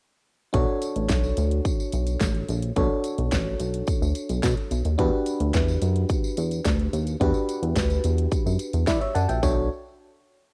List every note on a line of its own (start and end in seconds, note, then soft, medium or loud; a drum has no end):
0.53 0.66 B1 loud
0.53 2.72 D4 medium
0.53 2.72 F#4 medium
0.53 2.72 A4 medium
0.53 2.73 C#5 medium
0.53 kick loud
0.53 closed hi-hat medium
0.82 closed hi-hat medium
0.82 tambourine medium
0.96 1.08 A1 medium
0.96 closed hi-hat soft
1.09 1.33 B1 loud
1.09 kick loud
1.09 snare loud
1.09 clap medium
1.09 closed hi-hat medium
1.09 tambourine medium
1.24 tambourine soft
1.37 1.61 D2 loud
1.37 closed hi-hat medium
1.37 tambourine medium
1.51 closed hi-hat medium
1.65 kick loud
1.65 closed hi-hat medium
1.65 tambourine medium
1.80 tambourine soft
1.92 2.16 B1 medium
1.92 closed hi-hat medium
1.92 tambourine medium
2.07 closed hi-hat medium
2.07 tambourine soft
2.21 2.44 A1 medium
2.21 kick loud
2.21 snare loud
2.21 clap medium
2.21 closed hi-hat medium
2.21 tambourine medium
2.35 closed hi-hat soft
2.48 2.72 A#1 loud
2.48 closed hi-hat medium
2.48 tambourine medium
2.62 closed hi-hat medium
2.76 2.88 B1 loud
2.76 4.94 D4 medium
2.76 4.95 F#4 medium
2.76 4.95 A4 medium
2.76 4.95 C#5 medium
2.76 kick loud
2.76 closed hi-hat medium
3.04 closed hi-hat medium
3.04 tambourine medium
3.18 3.30 B1 medium
3.18 closed hi-hat medium
3.31 3.55 A1 loud
3.31 kick loud
3.31 snare loud
3.31 clap medium
3.31 closed hi-hat medium
3.31 tambourine medium
3.60 3.83 B1 medium
3.60 closed hi-hat medium
3.60 tambourine soft
3.74 closed hi-hat medium
3.87 kick loud
3.87 closed hi-hat medium
3.87 tambourine medium
4.02 4.13 D2 medium
4.02 tambourine medium
4.15 closed hi-hat medium
4.15 tambourine medium
4.29 4.41 B1 medium
4.29 closed hi-hat soft
4.29 tambourine soft
4.43 4.55 B2 loud
4.43 kick loud
4.43 snare loud
4.43 clap medium
4.43 closed hi-hat medium
4.43 tambourine medium
4.57 closed hi-hat soft
4.71 4.83 B1 medium
4.71 closed hi-hat medium
4.71 tambourine soft
4.85 4.97 D#2 medium
4.85 closed hi-hat medium
4.85 tambourine soft
4.98 5.10 E2 loud
4.98 7.17 D4 medium
4.98 7.17 F#4 medium
4.98 7.17 G4 medium
4.98 7.17 B4 medium
4.98 kick loud
4.98 closed hi-hat medium
5.26 closed hi-hat medium
5.26 tambourine medium
5.40 5.52 D2 medium
5.40 closed hi-hat medium
5.54 5.77 E2 loud
5.54 kick loud
5.54 snare loud
5.54 clap medium
5.54 closed hi-hat medium
5.54 tambourine medium
5.68 tambourine soft
5.82 6.05 F#2 loud
5.82 closed hi-hat medium
5.82 tambourine soft
5.96 closed hi-hat medium
6.09 kick loud
6.09 closed hi-hat medium
6.09 tambourine medium
6.24 tambourine medium
6.37 6.61 E2 loud
6.37 closed hi-hat medium
6.37 tambourine medium
6.51 closed hi-hat soft
6.51 tambourine soft
6.65 6.88 D2 medium
6.65 kick loud
6.65 snare loud
6.65 clap medium
6.65 closed hi-hat medium
6.65 tambourine medium
6.79 closed hi-hat soft
6.93 7.16 D#2 loud
6.93 closed hi-hat medium
6.93 tambourine soft
7.07 closed hi-hat medium
7.07 tambourine soft
7.20 7.32 E2 loud
7.20 9.39 D4 medium
7.20 9.39 F#4 medium
7.20 9.39 G4 medium
7.20 8.85 B4 medium
7.20 kick loud
7.20 closed hi-hat medium
7.34 tambourine soft
7.49 closed hi-hat medium
7.49 tambourine soft
7.62 7.74 E2 loud
7.62 closed hi-hat medium
7.76 7.99 D2 loud
7.76 kick loud
7.76 snare loud
7.76 clap medium
7.76 closed hi-hat medium
7.76 tambourine medium
7.90 closed hi-hat soft
7.90 tambourine soft
8.04 8.27 E2 loud
8.04 closed hi-hat medium
8.04 tambourine medium
8.18 closed hi-hat medium
8.31 kick loud
8.31 closed hi-hat medium
8.31 tambourine medium
8.46 8.57 F#2 medium
8.46 tambourine soft
8.59 closed hi-hat medium
8.59 tambourine medium
8.73 8.85 E2 medium
8.73 closed hi-hat soft
8.73 tambourine soft
8.87 8.99 E3 loud
8.87 9.01 B4 medium
8.87 9.01 D5 medium
8.87 9.00 E5 medium
8.87 kick loud
8.87 snare loud
8.87 clap medium
8.87 closed hi-hat medium
8.87 tambourine medium
9.01 9.15 C#5 medium
9.01 9.14 E5 medium
9.01 closed hi-hat soft
9.15 9.27 F#2 medium
9.15 9.29 D5 medium
9.15 9.28 F#5 medium
9.15 9.41 A5 medium
9.15 closed hi-hat medium
9.15 tambourine soft
9.29 9.41 A#1 loud
9.29 9.56 E5 medium
9.29 9.55 G5 medium
9.29 closed hi-hat medium
9.29 tambourine soft
9.43 9.69 B1 medium
9.43 9.69 D4 medium
9.43 9.69 F#4 medium
9.43 9.69 A4 medium
9.43 9.69 C#5 medium
9.43 kick loud
9.43 floor tom loud
9.43 tambourine medium